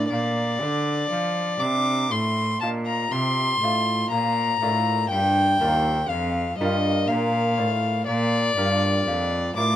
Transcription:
Already playing: cello A2
0.10 cello A#2, lute A#2, violin D5
0.61 cello D3, lute D3 D4 D5
1.11 cello F3, lute F3
1.60 cello C3, lute C3 D4 D5, violin D6
2.11 cello A2, lute A2, violin C6
2.61 cello A#2, lute A#2 F4 D#5, violin A5
2.86 violin A#5
3.12 cello C3, lute C3, violin C6
3.61 cello A2, lute A2 F4 D#5
4.10 cello A#2, lute A#2, violin A#5
4.61 cello A2, lute A2 A#3 F4 D5
5.10 cello G2, lute G2, violin G5
5.61 cello D#2, lute D#2 A#3 F4 D5
6.09 cello F2, lute F2, violin F5
6.59 cello G2, lute G2 A#3 F4 D5, violin D#5
7.08 cello A#2, lute A#2, violin F5
7.58 lute A2 A#3 F4 D5, cello A2
8.07 lute A#2, cello A#2, violin D5
8.57 lute G2 A#3 F4 D5, cello G2
9.07 cello F2, lute F2
9.56 lute A2 A#3 F4 D5, cello A2, violin D6

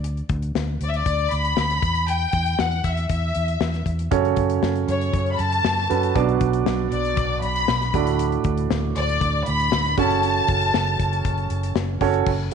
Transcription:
Already playing: fingered electric bass D2
0.04 closed hi-hat
0.17 closed hi-hat
0.29 fingered electric bass D2, kick, closed hi-hat
0.42 closed hi-hat
0.55 fingered electric bass D2, snare
0.81 fingered electric bass D2, violin section D5, closed hi-hat
0.90 violin section E5
0.94 violin section D5, closed hi-hat
1.06 fingered electric bass D2, kick, closed hi-hat
1.19 closed hi-hat
1.31 fingered electric bass D2, violin section B5, closed hi-hat
1.45 closed hi-hat
1.57 fingered electric bass D2, snare
1.70 snare, closed hi-hat
1.83 fingered electric bass E2, kick, closed hi-hat
1.95 closed hi-hat
2.08 violin section G5, closed hi-hat
2.21 closed hi-hat
2.33 fingered electric bass E2, kick, closed hi-hat
2.46 closed hi-hat
2.59 fingered electric bass E2, violin section F#5, snare
2.72 closed hi-hat
2.84 fingered electric bass E2, violin section E5, kick, closed hi-hat
2.97 closed hi-hat
3.09 fingered electric bass E2, violin section E5, kick, closed hi-hat
3.35 fingered electric bass E2, closed hi-hat
3.48 closed hi-hat
3.61 fingered electric bass E2, snare
3.74 snare, closed hi-hat
3.86 fingered electric bass E2, kick, closed hi-hat
3.99 closed hi-hat
4.11 fingered electric bass F#2, grand piano C#3 C#4 F#4 A4 C#5, kick, closed hi-hat
4.25 closed hi-hat
4.37 fingered electric bass F#2, kick, closed hi-hat
4.50 closed hi-hat
4.62 fingered electric bass F#2, snare
4.76 closed hi-hat
4.88 fingered electric bass F#2, violin section C#5, closed hi-hat
5.01 closed hi-hat
5.13 fingered electric bass F#2, kick, closed hi-hat
5.26 closed hi-hat
5.33 violin section B5
5.39 fingered electric bass F#2, violin section A5, closed hi-hat
5.52 closed hi-hat
5.64 fingered electric bass F#2, snare
5.78 snare
5.90 fingered electric bass F#2, grand piano C#4 F#4 A4 B4, closed hi-hat
6.03 closed hi-hat
6.15 fingered electric bass B1, grand piano B2 F#3 D4 F#4 B4 D5, kick, closed hi-hat
6.29 closed hi-hat
6.41 fingered electric bass B1, kick, closed hi-hat
6.53 closed hi-hat
6.66 fingered electric bass B1, snare
6.92 fingered electric bass B1, violin section D5, closed hi-hat
7.05 closed hi-hat
7.17 fingered electric bass B1, kick, closed hi-hat
7.42 fingered electric bass B1, violin section B5, closed hi-hat
7.56 closed hi-hat
7.68 fingered electric bass B1, snare
7.81 snare, closed hi-hat
7.94 fingered electric bass D2, grand piano A2 D4 F#4 A4 D5, kick, closed hi-hat
8.07 closed hi-hat
8.19 closed hi-hat
8.32 closed hi-hat
8.44 fingered electric bass D2, kick, closed hi-hat
8.57 closed hi-hat
8.71 fingered electric bass D2, snare
8.96 fingered electric bass D2, violin section D5, closed hi-hat
9.09 closed hi-hat
9.21 fingered electric bass D2, kick, closed hi-hat
9.46 fingered electric bass D2, violin section B5, closed hi-hat
9.60 closed hi-hat
9.72 fingered electric bass D2, snare
9.85 snare, closed hi-hat
9.97 fingered electric bass F#1, grand piano C#3 C#4 F#4 A4 C#5, violin section A5, kick, closed hi-hat
10.11 closed hi-hat
10.23 closed hi-hat
10.48 fingered electric bass F#1, kick, closed hi-hat
10.61 closed hi-hat
10.74 fingered electric bass F#1, snare
10.87 closed hi-hat
11.00 fingered electric bass F#1, kick, closed hi-hat
11.13 closed hi-hat
11.25 fingered electric bass F#1, kick, closed hi-hat
11.38 closed hi-hat
11.50 fingered electric bass F#1, closed hi-hat
11.63 closed hi-hat
11.75 fingered electric bass F#1, snare
12.01 fingered electric bass F#1, grand piano C#4 F#4 A4 C#5, kick, open hi-hat
12.14 closed hi-hat
12.26 fingered electric bass F#1, kick, crash

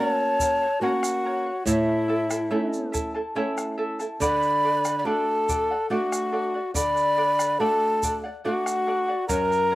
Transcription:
Already playing: nylon-string guitar A#3 C#4 F#4, pan flute C#5
0.00 charango A#4 C#5 F#5, quena A5
0.39 charango A#4 C#5 F#5, bombo low, shaker
0.62 charango C#5 F#5
0.81 nylon-string guitar A#3 C#4 F#4, pan flute F#4, charango A#4 C#5 F#5, quena F#5
1.03 bombo rim, shaker
1.24 charango A#4 C#5 F#5, bombo rim
1.46 charango C#5 F#5
1.66 nylon-string guitar A2, pan flute E4, charango E4 A4 C#5 E5 A5, quena E5, bombo low, shaker
1.89 bombo rim
2.08 charango E4 A4 E5 A5, bombo rim
2.29 charango E4 A4 A5, bombo rim, shaker
2.50 nylon-string guitar A3 C#4 E4, charango E4 A4 C#5 E5 A5
2.73 shaker
2.92 charango E4 A4 E5 A5, bombo rim, bombo low, shaker
3.14 charango E4 A4 A5, bombo rim
3.35 nylon-string guitar A3 C#4 E4, charango E4 A4 C#5 E5 A5
3.58 bombo rim, shaker
3.78 charango E4 A4 E5 A5
3.99 charango E4 A4 A5, bombo rim, shaker
4.20 nylon-string guitar D3, charango A4 D5 F#5, pan flute D5, quena B5, bombo low, shaker
4.43 shaker
4.64 charango A4 D5 F#5, bombo rim
4.85 charango D5 F#5, bombo rim, shaker
4.98 pan flute D5, quena B5
5.04 nylon-string guitar A3 D4 F#4, charango A4 D5 F#5, pan flute A4, quena A5, bombo rim
5.49 charango A4 D5 F#5, bombo low, shaker
5.71 charango D5 F#5
5.90 nylon-string guitar A3 D4 F#4, pan flute F#4, charango A4 D5 F#5, quena F#5
6.12 bombo rim, shaker
6.32 charango A4 D5 F#5, bombo rim
6.54 charango D5 F#5
6.74 nylon-string guitar D3, charango A4 D5 F#5, pan flute D5, quena B5, bombo low, shaker
6.96 bombo rim, shaker
7.17 charango A4 D5 F#5, bombo rim
7.39 charango D5 F#5, bombo rim, shaker
7.60 nylon-string guitar A3 D4 F#4, charango A4 D5 F#5, pan flute A4, quena A5, bombo rim
8.03 charango A4 D5 F#5, bombo low, shaker
8.24 charango D5 F#5
8.45 nylon-string guitar A3 D4 F#4, pan flute F#4, charango A4 D5 F#5, quena F#5
8.66 bombo rim, shaker
8.87 charango A4 D5 F#5, bombo rim
9.08 charango D5 F#5
9.28 nylon-string guitar F#2, pan flute A#4, charango A#4 C#5 F#5, quena A#5, bombo low, shaker
9.51 bombo rim, shaker
9.70 charango A#4 C#5 F#5

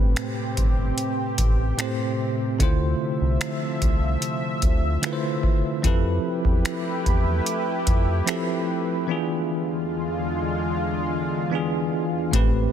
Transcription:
Already playing: analog synth bass G1, tine electric piano A2 A3 C4 G4 B4, analog synth pad C3 C4 G4
0.16 finger snap, closed hi-hat
0.57 analog synth bass G1, kick, closed hi-hat
0.98 closed hi-hat
1.38 analog synth bass A1, kick, closed hi-hat
1.77 tine electric piano A2 A3 C4 G4, finger snap, closed hi-hat
1.82 tine electric piano C5
2.59 analog synth bass D2, tine electric piano D3 A3 E4 F4, analog synth pad F3 E5, kick, closed hi-hat
2.63 tine electric piano C5
3.21 analog synth bass C2
3.41 finger snap, closed hi-hat
3.82 analog synth bass C2, kick, closed hi-hat
4.22 closed hi-hat
4.62 analog synth bass D2, kick, closed hi-hat
5.02 tine electric piano D3 A3 E4 F4, finger snap, closed hi-hat
5.06 tine electric piano B4
5.13 tine electric piano C5
5.43 kick
5.82 analog synth bass F2, tine electric piano F3 C4 E4 G4 A4, analog synth pad A3 E4 G4 B4, kick, closed hi-hat
5.87 tine electric piano B4
6.45 analog synth bass E2, kick
6.65 finger snap, closed hi-hat
7.06 analog synth bass E2, kick, closed hi-hat
7.46 closed hi-hat
7.87 analog synth bass F2, kick, closed hi-hat
8.26 tine electric piano F3 C4 E4 G4 A4, finger snap, closed hi-hat
8.30 tine electric piano B4
9.07 analog synth pad E2 D3 G#3 F4, tine electric piano E3 B3 D4 F4
9.11 tine electric piano G#4
11.50 tine electric piano E3 B3 D4 F4
11.55 tine electric piano G#4
12.31 analog synth bass A1, tine electric piano A2 A3 C4 G4, analog synth pad C3 G4 B4, kick, closed hi-hat
12.36 tine electric piano B4

